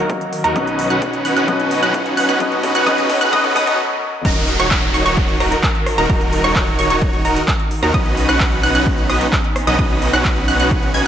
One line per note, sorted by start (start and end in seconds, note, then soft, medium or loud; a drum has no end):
0.00 3.75 D#3 medium
0.00 0.55 F#3 medium
0.00 0.57 A#3 medium
0.00 0.52 D#4 medium
0.00 0.56 D#4 medium
0.00 0.52 F#4 medium
0.00 0.52 A#4 medium
0.00 0.57 A#4 medium
0.00 riser medium
0.10 kick loud
0.10 closed hi-hat soft
0.21 closed hi-hat soft
0.33 open hi-hat loud
0.44 0.53 D#2 medium
0.44 0.53 D#4 medium
0.44 0.53 F#4 medium
0.44 0.53 A#4 medium
0.44 0.53 A#5 medium
0.44 closed hi-hat medium
0.55 0.88 B1 loud
0.55 1.45 B2 medium
0.55 1.46 F#3 medium
0.55 3.76 B3 medium
0.55 0.88 C#4 medium
0.55 3.76 C#4 medium
0.55 1.46 C#4 medium
0.55 0.88 D#4 medium
0.55 1.47 D#4 medium
0.55 0.88 F#4 medium
0.55 0.88 B4 medium
0.55 1.47 B4 medium
0.55 0.88 D#5 medium
0.55 0.88 D#6 medium
0.55 kick loud
0.55 closed hi-hat soft
0.67 closed hi-hat soft
0.79 open hi-hat loud
0.90 1.23 B1 loud
0.90 1.22 C#4 medium
0.90 1.22 D#4 medium
0.90 1.22 F#4 medium
0.90 1.22 B4 medium
0.90 1.22 F#5 medium
0.90 1.22 F#6 medium
0.90 closed hi-hat medium
1.02 kick loud
1.02 closed hi-hat medium
1.13 closed hi-hat soft
1.25 1.34 B1 medium
1.25 1.34 C#4 medium
1.25 1.34 D#4 medium
1.25 1.34 F#4 medium
1.25 1.34 B4 medium
1.25 1.34 F#5 medium
1.25 1.34 F#6 medium
1.25 open hi-hat loud
1.36 1.46 B1 loud
1.36 1.46 C#4 medium
1.36 1.46 D#4 medium
1.36 1.46 F#4 medium
1.36 1.46 B4 medium
1.36 1.46 F#5 medium
1.36 1.46 F#6 medium
1.36 closed hi-hat soft
1.47 1.80 B1 medium
1.47 2.38 B2 medium
1.47 2.38 F#3 medium
1.47 1.80 C#4 medium
1.47 2.39 C#4 medium
1.47 1.80 D#4 medium
1.47 2.39 D#4 medium
1.47 1.80 F#4 medium
1.47 1.80 B4 medium
1.47 2.39 B4 medium
1.47 1.80 D#5 medium
1.47 1.80 D#6 medium
1.47 kick loud
1.47 closed hi-hat soft
1.60 closed hi-hat soft
1.71 open hi-hat loud
1.83 2.15 B1 loud
1.83 2.15 C#4 medium
1.83 2.15 D#4 medium
1.83 2.15 F#4 medium
1.83 2.15 B4 medium
1.83 2.15 F#5 medium
1.83 2.15 F#6 medium
1.83 closed hi-hat soft
1.94 kick loud
1.94 closed hi-hat medium
2.06 closed hi-hat soft
2.17 2.26 B1 medium
2.17 2.26 C#4 medium
2.17 2.26 D#4 medium
2.17 2.26 F#4 medium
2.17 2.26 B4 medium
2.17 2.26 F#5 medium
2.17 2.26 F#6 medium
2.17 open hi-hat loud
2.29 2.38 B1 medium
2.29 2.39 C#4 medium
2.29 2.39 D#4 medium
2.29 2.39 F#4 medium
2.29 2.39 B4 medium
2.29 2.39 F#5 medium
2.29 2.39 F#6 medium
2.29 closed hi-hat medium
2.39 2.73 B1 loud
2.39 2.84 B2 medium
2.39 2.84 F#3 medium
2.39 2.85 C#4 medium
2.39 2.72 C#4 medium
2.39 2.72 D#4 medium
2.39 2.85 D#4 medium
2.39 2.72 F#4 medium
2.39 2.72 B4 medium
2.39 2.85 B4 medium
2.39 2.72 D#5 medium
2.39 2.72 D#6 medium
2.39 kick loud
2.39 closed hi-hat soft
2.52 closed hi-hat soft
2.63 kick loud
2.63 open hi-hat loud
2.75 2.84 B1 loud
2.75 2.85 C#4 medium
2.75 2.85 D#4 medium
2.75 2.85 F#4 medium
2.75 2.85 B4 medium
2.75 2.85 F#5 medium
2.75 2.85 F#6 loud
2.75 closed hi-hat soft
2.85 3.19 B1 loud
2.85 3.30 B2 medium
2.85 3.31 F#3 medium
2.85 3.31 C#4 medium
2.85 3.18 C#4 medium
2.85 3.18 D#4 medium
2.85 3.31 D#4 medium
2.85 3.18 F#4 medium
2.85 3.18 B4 medium
2.85 3.31 B4 medium
2.85 3.18 D#5 medium
2.85 3.18 D#6 medium
2.85 kick loud
2.85 closed hi-hat soft
2.98 closed hi-hat soft
3.10 kick loud
3.10 open hi-hat loud
3.21 3.30 B1 medium
3.21 3.31 C#4 medium
3.21 3.31 D#4 medium
3.21 3.31 F#4 medium
3.21 3.31 B4 medium
3.21 3.31 F#5 loud
3.21 3.31 F#6 loud
3.21 closed hi-hat soft
3.31 3.53 B1 medium
3.31 3.53 B2 medium
3.31 3.54 F#3 medium
3.31 3.54 C#4 medium
3.31 3.54 D#4 medium
3.31 3.54 F#4 medium
3.31 3.54 B4 medium
3.31 3.54 D#5 medium
3.31 3.54 D#6 medium
3.31 kick loud
3.31 closed hi-hat soft
3.44 kick medium
3.44 closed hi-hat soft
3.55 3.77 B1 loud
3.55 3.76 B2 medium
3.55 3.77 F#3 medium
3.55 3.77 C#4 medium
3.55 3.77 D#4 medium
3.55 3.77 F#4 medium
3.55 3.77 B4 medium
3.55 3.78 B4 medium
3.55 3.77 D#5 medium
3.55 3.77 D#6 medium
3.55 kick loud
3.55 open hi-hat loud
3.67 kick medium
3.67 closed hi-hat medium
4.25 4.57 D#1 loud
4.25 7.91 D#3 medium
4.25 4.57 D#4 medium
4.25 11.07 D#4 medium
4.25 4.57 F#4 medium
4.25 7.91 F#4 medium
4.25 4.57 A#4 medium
4.25 7.91 A#4 medium
4.25 4.57 A#5 medium
4.25 kick loud
4.25 closed hi-hat medium
4.25 crash loud
4.25 downlifter medium
4.37 closed hi-hat soft
4.48 open hi-hat loud
4.60 4.92 D#1 medium
4.60 4.91 D#4 medium
4.60 4.91 F#4 medium
4.60 4.91 C#5 loud
4.60 4.91 C#6 loud
4.60 cross-stick medium
4.60 closed hi-hat medium
4.71 kick loud
4.71 clap loud
4.71 closed hi-hat medium
4.83 closed hi-hat soft
4.94 5.03 D#1 loud
4.94 5.03 D#4 medium
4.94 5.03 F#4 medium
4.94 5.03 C#5 loud
4.94 5.03 C#6 loud
4.94 open hi-hat medium
5.06 5.38 D#1 medium
5.06 5.38 D#4 medium
5.06 5.38 F#4 medium
5.06 5.38 C#5 medium
5.06 5.38 C#6 medium
5.06 closed hi-hat medium
5.17 kick loud
5.17 closed hi-hat medium
5.29 closed hi-hat soft
5.40 5.53 D#1 loud
5.40 5.56 D#4 medium
5.40 5.56 F#4 medium
5.40 5.56 A#4 medium
5.40 5.56 A#5 medium
5.40 cross-stick medium
5.40 open hi-hat loud
5.52 closed hi-hat medium
5.63 kick loud
5.63 clap loud
5.63 closed hi-hat medium
5.75 closed hi-hat soft
5.86 cross-stick medium
5.86 open hi-hat medium
5.98 6.07 D#1 medium
5.98 6.07 D#4 medium
5.98 6.07 F#4 medium
5.98 6.07 A#4 medium
5.98 6.07 A#5 medium
5.98 closed hi-hat medium
6.10 6.42 D#1 loud
6.10 6.41 D#4 medium
6.10 6.41 F#4 medium
6.10 6.41 A#4 medium
6.10 6.41 A#5 medium
6.10 kick loud
6.10 closed hi-hat medium
6.21 closed hi-hat soft
6.33 open hi-hat loud
6.44 6.77 D#1 loud
6.44 6.76 D#4 medium
6.44 6.76 F#4 medium
6.44 6.76 C#5 medium
6.44 6.76 C#6 loud
6.44 cross-stick medium
6.44 closed hi-hat medium
6.56 kick loud
6.56 clap loud
6.56 closed hi-hat medium
6.67 closed hi-hat soft
6.79 6.88 D#1 loud
6.79 6.88 D#4 medium
6.79 6.88 F#4 medium
6.79 6.88 C#5 loud
6.79 6.88 C#6 loud
6.79 open hi-hat loud
6.90 7.23 D#1 medium
6.90 7.22 D#4 medium
6.90 7.22 F#4 medium
6.90 7.22 C#5 medium
6.90 7.22 C#6 medium
6.90 closed hi-hat medium
7.02 kick loud
7.02 closed hi-hat medium
7.13 closed hi-hat soft
7.25 7.38 D#1 loud
7.25 7.40 D#4 medium
7.25 7.40 F#4 medium
7.25 7.40 A#4 medium
7.25 7.40 A#5 medium
7.25 open hi-hat loud
7.36 closed hi-hat medium
7.48 kick loud
7.48 clap loud
7.48 closed hi-hat medium
7.60 closed hi-hat soft
7.71 open hi-hat loud
7.83 7.92 D#2 loud
7.83 7.91 D#4 medium
7.83 7.91 F#4 medium
7.83 7.91 A#4 medium
7.83 7.91 A#5 medium
7.83 cross-stick medium
7.83 closed hi-hat medium
7.94 8.27 B1 loud
7.94 11.07 B3 medium
7.94 11.07 C#4 medium
7.94 8.26 C#4 medium
7.94 8.26 D#4 medium
7.94 8.26 F#4 medium
7.94 8.26 B4 medium
7.94 8.26 D#5 medium
7.94 8.26 D#6 medium
7.94 kick loud
7.94 closed hi-hat medium
8.06 closed hi-hat soft
8.17 open hi-hat loud
8.29 8.61 B1 loud
8.29 8.61 C#4 medium
8.29 8.61 D#4 medium
8.29 8.61 F#4 medium
8.29 8.61 B4 medium
8.29 8.61 F#5 loud
8.29 8.61 F#6 loud
8.29 cross-stick medium
8.29 closed hi-hat medium
8.40 kick loud
8.40 clap loud
8.40 closed hi-hat medium
8.52 closed hi-hat soft
8.63 8.73 B1 loud
8.63 8.72 C#4 medium
8.63 8.72 D#4 medium
8.63 8.72 F#4 medium
8.63 8.72 B4 medium
8.63 8.72 F#5 loud
8.63 8.72 F#6 loud
8.63 open hi-hat loud
8.75 9.07 B1 loud
8.75 9.07 C#4 medium
8.75 9.07 D#4 medium
8.75 9.07 F#4 medium
8.75 9.07 B4 medium
8.75 9.07 F#5 medium
8.75 9.07 F#6 medium
8.75 closed hi-hat medium
8.87 kick loud
8.87 closed hi-hat medium
8.98 closed hi-hat soft
9.10 9.23 B1 loud
9.10 9.25 C#4 medium
9.10 9.25 D#4 medium
9.10 9.25 F#4 medium
9.10 9.25 B4 medium
9.10 9.25 D#5 medium
9.10 9.25 D#6 medium
9.10 cross-stick medium
9.10 open hi-hat loud
9.21 closed hi-hat medium
9.33 kick loud
9.33 clap loud
9.33 closed hi-hat medium
9.44 closed hi-hat soft
9.56 cross-stick medium
9.56 open hi-hat loud
9.67 9.77 B1 medium
9.67 9.76 C#4 medium
9.67 9.76 D#4 medium
9.67 9.76 F#4 medium
9.67 9.76 B4 medium
9.67 9.76 D#5 medium
9.67 9.76 D#6 medium
9.67 closed hi-hat medium
9.79 10.11 B1 loud
9.79 10.11 C#4 medium
9.79 10.11 D#4 medium
9.79 10.11 F#4 medium
9.79 10.11 B4 medium
9.79 10.11 D#5 medium
9.79 10.11 D#6 medium
9.79 kick loud
9.79 closed hi-hat soft
9.90 closed hi-hat soft
10.02 open hi-hat loud
10.13 10.46 B1 loud
10.13 10.45 C#4 medium
10.13 10.45 D#4 medium
10.13 10.45 F#4 medium
10.13 10.45 B4 medium
10.13 10.45 F#5 loud
10.13 10.45 F#6 loud
10.13 cross-stick medium
10.13 closed hi-hat soft
10.25 kick loud
10.25 clap loud
10.25 closed hi-hat medium
10.37 closed hi-hat soft
10.48 10.57 B1 loud
10.48 10.57 C#4 medium
10.48 10.57 D#4 medium
10.48 10.57 F#4 medium
10.48 10.57 B4 medium
10.48 10.57 F#5 loud
10.48 10.57 F#6 loud
10.48 open hi-hat medium
10.60 10.92 B1 medium
10.60 10.91 C#4 medium
10.60 10.91 D#4 medium
10.60 10.91 F#4 medium
10.60 10.91 B4 medium
10.60 10.91 F#5 medium
10.60 10.91 F#6 medium
10.60 closed hi-hat soft
10.71 kick loud
10.71 closed hi-hat soft
10.83 closed hi-hat soft
10.94 11.03 B1 medium
10.94 11.03 C#4 medium
10.94 11.03 D#4 medium
10.94 11.03 F#4 medium
10.94 11.03 B4 medium
10.94 11.03 G#5 loud
10.94 11.03 G#6 loud
10.94 open hi-hat loud